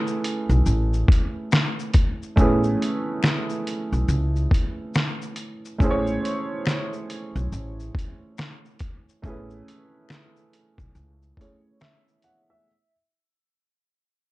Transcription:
0.00 2.33 A3 medium
0.00 2.33 C#4 medium
0.00 2.34 E4 medium
0.00 2.35 G#4 medium
0.00 2.35 B4 medium
0.07 shaker medium
0.24 closed hi-hat medium
0.24 shaker soft
0.49 0.63 B1 medium
0.49 shaker soft
0.66 1.02 A1 medium
0.66 shaker medium
0.93 shaker soft
1.08 kick loud
1.08 closed hi-hat medium
1.08 shaker soft
1.51 finger snap medium
1.51 snare loud
1.51 shaker medium
1.79 shaker medium
1.94 kick medium
1.94 closed hi-hat medium
1.94 shaker soft
2.23 shaker soft
2.36 2.73 A1 loud
2.36 5.76 A3 medium
2.36 5.76 C#4 medium
2.36 5.77 E4 medium
2.36 kick loud
2.36 shaker medium
2.40 5.78 G#4 medium
2.40 5.78 B4 medium
2.63 shaker soft
2.82 closed hi-hat medium
2.82 shaker medium
3.23 finger snap medium
3.23 snare loud
3.23 shaker medium
3.49 shaker medium
3.67 closed hi-hat medium
3.67 shaker soft
3.92 4.06 B1 medium
3.92 shaker soft
4.08 4.44 C#2 loud
4.08 shaker medium
4.36 shaker soft
4.51 kick loud
4.51 closed hi-hat medium
4.51 shaker soft
4.94 finger snap medium
4.94 snare loud
4.94 shaker medium
5.22 shaker medium
5.36 closed hi-hat medium
5.36 shaker soft
5.65 shaker soft
5.79 6.16 A1 medium
5.79 9.18 A3 medium
5.79 9.19 C#4 medium
5.79 9.20 E4 medium
5.79 kick loud
5.79 shaker medium
5.83 9.20 G#4 medium
5.83 5.90 C5 medium
5.91 9.24 C#5 medium
6.07 shaker soft
6.25 closed hi-hat medium
6.25 shaker medium
6.66 finger snap medium
6.66 snare loud
6.66 shaker medium
6.93 shaker soft
7.10 closed hi-hat medium
7.10 shaker soft
7.36 7.49 B1 loud
7.36 shaker medium
7.52 7.88 A1 loud
7.52 shaker medium
7.80 shaker soft
7.95 kick loud
7.95 closed hi-hat medium
7.95 shaker soft
8.37 finger snap medium
8.37 snare loud
8.37 shaker medium
8.65 shaker medium
8.79 kick medium
8.79 closed hi-hat medium
8.79 shaker medium
9.09 shaker soft
9.22 9.59 A1 loud
9.22 11.33 A3 medium
9.22 11.34 C#4 medium
9.22 11.35 E4 medium
9.22 kick loud
9.22 shaker medium
9.27 11.35 G#4 medium
9.27 11.36 B4 medium
9.50 shaker soft
9.68 closed hi-hat medium
9.68 shaker medium
10.09 finger snap medium
10.09 snare loud
10.09 shaker medium
10.36 shaker soft
10.53 closed hi-hat medium
10.53 shaker soft
10.78 10.92 B1 medium
10.78 kick medium
10.78 shaker medium
10.95 11.31 C#2 medium
10.95 shaker medium
11.22 shaker soft
11.37 12.66 A3 medium
11.37 12.67 C#4 medium
11.37 12.67 E4 medium
11.37 12.68 G#4 medium
11.37 12.68 C#5 medium
11.37 kick loud
11.37 closed hi-hat medium
11.37 shaker soft
11.80 12.22 E5 medium
11.80 finger snap medium
11.80 snare loud
11.80 shaker medium
12.08 shaker medium
12.22 12.49 F#5 medium
12.22 closed hi-hat medium
12.22 shaker soft
12.50 12.91 E5 medium

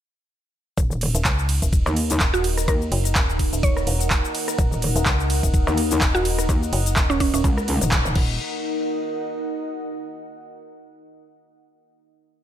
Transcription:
0.77 1.13 D#1 loud
0.77 8.14 D#4 medium
0.77 kick loud
0.77 closed hi-hat medium
0.77 shaker medium
0.91 shaker soft
0.96 8.15 D#5 medium
1.01 open hi-hat loud
1.01 ride medium
1.11 1.23 D#1 loud
1.11 8.15 A#4 medium
1.11 closed hi-hat medium
1.15 shaker medium
1.25 1.60 C#2 medium
1.25 kick loud
1.25 clap loud
1.25 closed hi-hat medium
1.25 shaker medium
1.39 shaker soft
1.49 open hi-hat medium
1.49 ride medium
1.62 1.84 D#1 loud
1.62 kick medium
1.62 closed hi-hat medium
1.62 shaker medium
1.73 kick loud
1.73 closed hi-hat medium
1.73 shaker medium
1.86 2.19 D#2 loud
1.86 cross-stick medium
1.86 shaker soft
1.96 open hi-hat loud
1.96 ride medium
2.10 closed hi-hat medium
2.10 shaker medium
2.19 2.66 D#1 medium
2.19 8.16 F#5 medium
2.19 kick loud
2.19 clap loud
2.19 closed hi-hat medium
2.19 shaker medium
2.34 2.45 F#4 medium
2.34 shaker soft
2.44 open hi-hat medium
2.44 ride medium
2.58 cross-stick medium
2.58 closed hi-hat medium
2.58 shaker medium
2.68 2.90 D#2 loud
2.68 2.82 A#4 medium
2.68 kick loud
2.68 closed hi-hat medium
2.68 shaker medium
2.82 shaker soft
2.92 3.14 F#1 loud
2.92 open hi-hat loud
2.92 ride medium
3.05 closed hi-hat medium
3.05 shaker medium
3.15 3.51 D#1 loud
3.15 kick loud
3.15 clap loud
3.15 closed hi-hat medium
3.15 shaker medium
3.30 shaker soft
3.39 kick medium
3.39 open hi-hat loud
3.39 ride medium
3.53 3.85 D#1 loud
3.53 closed hi-hat medium
3.53 shaker medium
3.63 4.00 C#5 medium
3.63 kick loud
3.63 closed hi-hat medium
3.63 shaker medium
3.77 cross-stick medium
3.77 shaker soft
3.87 4.22 E1 loud
3.87 open hi-hat loud
3.87 ride medium
4.00 closed hi-hat medium
4.00 shaker medium
4.10 kick loud
4.10 clap loud
4.10 closed hi-hat medium
4.10 shaker medium
4.25 shaker soft
4.35 open hi-hat loud
4.35 ride medium
4.48 cross-stick medium
4.48 closed hi-hat medium
4.48 shaker medium
4.58 4.94 D#1 loud
4.58 kick loud
4.58 closed hi-hat medium
4.58 shaker medium
4.72 shaker soft
4.82 open hi-hat loud
4.82 ride medium
4.96 5.04 D#1 loud
4.96 closed hi-hat medium
4.96 shaker medium
5.06 5.41 C#2 medium
5.06 kick loud
5.06 clap loud
5.06 closed hi-hat medium
5.06 shaker medium
5.20 shaker soft
5.30 open hi-hat loud
5.30 ride medium
5.43 5.65 D#1 loud
5.43 kick medium
5.43 closed hi-hat medium
5.43 shaker medium
5.54 kick loud
5.54 closed hi-hat medium
5.54 shaker medium
5.67 6.00 D#2 loud
5.67 cross-stick medium
5.67 shaker soft
5.77 open hi-hat loud
5.77 ride medium
5.91 closed hi-hat medium
5.91 shaker medium
6.01 6.47 D#1 medium
6.01 kick loud
6.01 clap loud
6.01 closed hi-hat medium
6.01 shaker medium
6.15 6.26 F#4 loud
6.15 shaker soft
6.25 open hi-hat loud
6.25 ride medium
6.39 cross-stick medium
6.39 closed hi-hat medium
6.39 shaker medium
6.49 6.71 D#2 loud
6.49 kick loud
6.49 closed hi-hat medium
6.49 shaker medium
6.63 shaker soft
6.73 6.95 F#1 loud
6.73 open hi-hat loud
6.73 ride medium
6.86 closed hi-hat medium
6.86 shaker medium
6.96 7.32 D#1 loud
6.96 kick loud
6.96 clap loud
6.96 closed hi-hat medium
6.96 shaker medium
7.10 7.18 C#4 medium
7.10 shaker soft
7.20 7.29 C#4 medium
7.20 kick medium
7.20 open hi-hat loud
7.20 ride medium
7.34 7.42 D#1 loud
7.34 7.40 C#4 medium
7.34 closed hi-hat medium
7.34 shaker medium
7.44 7.79 C#2 loud
7.44 kick loud
7.44 closed hi-hat medium
7.44 shaker medium
7.58 cross-stick medium
7.58 shaker soft
7.68 open hi-hat loud
7.68 ride medium
7.81 8.03 D#1 loud
7.81 closed hi-hat medium
7.81 shaker medium
7.91 kick loud
7.91 clap loud
7.91 closed hi-hat soft
7.91 shaker medium
8.05 8.14 D#1 medium
8.05 shaker soft
8.15 8.38 D#1 loud
8.15 10.02 D#4 medium
8.15 kick loud
8.15 crash medium
8.24 10.02 A#4 medium
8.55 10.26 D#5 medium
8.61 10.26 F#5 medium

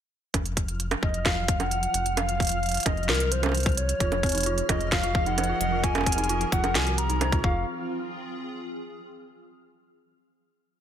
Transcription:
0.34 0.96 F1 medium
0.34 7.68 F3 medium
0.34 7.68 F6 medium
0.34 kick medium
0.34 closed hi-hat medium
0.34 high bongo medium
0.46 closed hi-hat soft
0.57 kick medium
0.57 closed hi-hat medium
0.68 closed hi-hat soft
0.80 closed hi-hat medium
0.91 closed hi-hat soft
0.91 high bongo medium
1.03 1.88 F1 medium
1.03 1.27 D#5 medium
1.03 kick loud
1.14 closed hi-hat soft
1.26 1.62 F5 loud
1.26 kick loud
1.26 snare loud
1.26 closed hi-hat medium
1.48 kick loud
1.48 closed hi-hat medium
1.60 2.19 F#5 loud
1.60 closed hi-hat soft
1.60 high bongo medium
1.71 closed hi-hat medium
1.83 closed hi-hat soft
1.94 2.80 F1 medium
1.94 closed hi-hat medium
2.06 closed hi-hat soft
2.17 2.88 F5 loud
2.17 closed hi-hat medium
2.17 high bongo medium
2.29 closed hi-hat soft
2.40 kick medium
2.40 closed hi-hat soft
2.42 closed hi-hat medium
2.45 closed hi-hat medium
2.47 closed hi-hat medium
2.49 closed hi-hat medium
2.52 closed hi-hat soft
2.63 closed hi-hat soft
2.66 closed hi-hat soft
2.69 closed hi-hat soft
2.72 closed hi-hat soft
2.74 closed hi-hat soft
2.77 closed hi-hat medium
2.80 closed hi-hat medium
2.83 3.10 F1 medium
2.83 kick loud
2.83 closed hi-hat medium
2.86 3.10 D#5 medium
2.86 closed hi-hat medium
2.86 high bongo medium
2.97 closed hi-hat soft
3.03 closed hi-hat soft
3.09 3.94 C2 medium
3.09 3.33 A#4 medium
3.09 snare loud
3.09 closed hi-hat medium
3.14 closed hi-hat soft
3.20 closed hi-hat soft
3.32 3.77 C5 medium
3.32 closed hi-hat medium
3.43 closed hi-hat soft
3.43 high bongo medium
3.46 high bongo medium
3.49 high bongo medium
3.52 closed hi-hat medium
3.52 high bongo soft
3.57 closed hi-hat medium
3.60 closed hi-hat soft
3.63 closed hi-hat soft
3.66 kick loud
3.66 closed hi-hat soft
3.69 closed hi-hat soft
3.72 closed hi-hat soft
3.75 closed hi-hat soft
3.77 4.65 C#5 loud
3.77 closed hi-hat loud
3.89 closed hi-hat soft
4.00 4.63 F1 loud
4.00 7.44 F3 medium
4.00 4.05 F4 medium
4.00 kick medium
4.00 closed hi-hat medium
4.12 closed hi-hat soft
4.12 high bongo medium
4.23 4.31 C4 medium
4.23 7.44 G#4 medium
4.23 kick medium
4.23 closed hi-hat soft
4.26 closed hi-hat soft
4.29 closed hi-hat medium
4.32 closed hi-hat medium
4.35 4.43 D#4 medium
4.35 closed hi-hat medium
4.38 closed hi-hat medium
4.41 closed hi-hat medium
4.43 closed hi-hat medium
4.46 4.57 F4 loud
4.46 closed hi-hat medium
4.58 4.62 F4 medium
4.58 closed hi-hat soft
4.69 5.54 F1 medium
4.69 4.77 F4 medium
4.69 4.94 D#5 loud
4.69 kick loud
4.69 closed hi-hat loud
4.69 high bongo medium
4.81 7.44 A#4 loud
4.81 6.57 D#5 medium
4.81 closed hi-hat soft
4.92 5.28 F5 loud
4.92 kick loud
4.92 snare loud
4.92 closed hi-hat medium
5.03 5.11 F4 medium
5.03 closed hi-hat soft
5.15 kick loud
5.26 5.34 D#4 medium
5.26 5.85 F#5 loud
5.26 closed hi-hat soft
5.38 5.46 C5 medium
5.38 closed hi-hat medium
5.38 high bongo soft
5.44 closed hi-hat soft
5.49 5.54 F4 medium
5.61 6.46 F1 loud
5.61 closed hi-hat loud
5.72 5.80 F4 medium
5.84 5.88 F4 medium
5.84 6.52 G#5 loud
5.84 kick medium
5.84 closed hi-hat medium
5.95 closed hi-hat soft
5.95 high bongo medium
5.98 high bongo medium
6.01 high bongo soft
6.04 6.14 C4 medium
6.04 kick medium
6.04 closed hi-hat medium
6.04 high bongo soft
6.12 closed hi-hat medium
6.18 6.26 D#4 medium
6.18 closed hi-hat medium
6.24 closed hi-hat soft
6.29 6.40 F4 loud
6.29 closed hi-hat medium
6.41 6.46 F4 medium
6.41 closed hi-hat soft
6.52 6.77 F1 medium
6.52 6.60 F4 medium
6.52 6.77 F#5 loud
6.52 kick loud
6.52 closed hi-hat medium
6.64 closed hi-hat soft
6.64 high bongo soft
6.75 7.09 C2 medium
6.75 6.98 G#5 loud
6.75 snare loud
6.75 closed hi-hat medium
6.87 6.95 F#4 medium
6.87 closed hi-hat soft
6.98 7.41 A#5 loud
6.98 closed hi-hat medium
7.10 7.43 C2 medium
7.10 7.18 D#4 medium
7.10 closed hi-hat soft
7.21 7.29 C5 medium
7.21 closed hi-hat medium
7.21 high bongo medium
7.32 7.37 F4 medium
7.32 kick loud
7.32 closed hi-hat soft
7.44 7.65 F1 medium
7.44 9.23 C4 medium
7.44 7.65 F4 loud
7.44 7.65 F5 medium
7.44 kick loud
7.51 9.23 F4 medium
7.81 9.46 G#4 medium

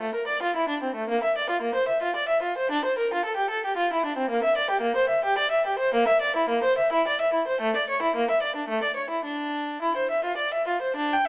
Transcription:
0.01 0.14 A3 medium
0.15 0.28 A#4 soft
0.27 0.41 D5 medium
0.43 0.55 F4 medium
0.56 0.69 E4 medium
0.69 0.82 D4 soft
0.83 0.96 C4 soft
0.95 1.09 A3 soft
1.09 1.22 A#3 medium
1.23 1.36 E5 medium
1.38 1.50 D5 soft
1.50 1.63 F4 medium
1.62 1.76 A#3 medium
1.75 1.89 C5 medium
1.88 2.02 E5 soft
2.03 2.16 F4 medium
2.16 2.30 D5 medium
2.29 2.43 E5 soft
2.42 2.57 F4 soft
2.58 2.71 C5 medium
2.71 2.85 D4 medium
2.85 2.99 C5 medium
2.98 3.12 A#4 medium
3.14 3.26 F4 medium
3.26 3.39 A4 medium
3.37 3.51 G4 medium
3.50 3.65 A4 medium
3.66 3.79 G4 medium
3.77 3.91 F4 medium
3.93 4.06 E4 medium
4.06 4.19 D4 medium
4.17 4.31 C4 medium
4.30 4.44 A#3 medium
4.44 4.58 E5 medium
4.57 4.71 D5 medium
4.70 4.85 G4 medium
4.81 4.97 A#3 medium
4.96 5.11 C5 medium
5.09 5.24 E5 medium
5.25 5.39 G4 medium
5.38 5.52 D5 medium
5.51 5.66 E5 medium
5.67 5.81 G4 medium
5.79 5.94 C5 medium
5.94 6.09 A#3 medium
6.08 6.22 E5 medium
6.22 6.36 D5 medium
6.36 6.50 E4 medium
6.49 6.63 A#3 medium
6.64 6.77 C5 medium
6.78 6.91 E5 medium
6.93 7.05 E4 medium
7.08 7.20 D5 medium
7.21 7.33 E5 medium
7.34 7.46 E4 soft
7.48 7.60 C5 medium
7.61 7.73 A3 medium
7.76 7.88 D5 medium
7.90 8.01 C#5 medium
8.02 8.14 E4 medium
8.16 8.28 A#3 medium
8.31 8.42 E5 medium
8.43 8.55 D5 medium
8.56 8.69 D4 medium
8.69 8.82 A3 medium
8.83 8.97 D5 medium
8.96 9.11 C#5 soft
9.10 9.25 E4 soft
9.25 9.82 D4 medium
9.82 9.97 E4 medium
9.97 10.11 C5 medium
10.11 10.25 E5 medium
10.25 10.39 F4 soft
10.37 10.53 D5 medium
10.54 10.69 E5 soft
10.68 10.83 F4 soft
10.82 10.97 C5 soft
10.96 11.11 D4 medium
11.14 11.27 G5 medium

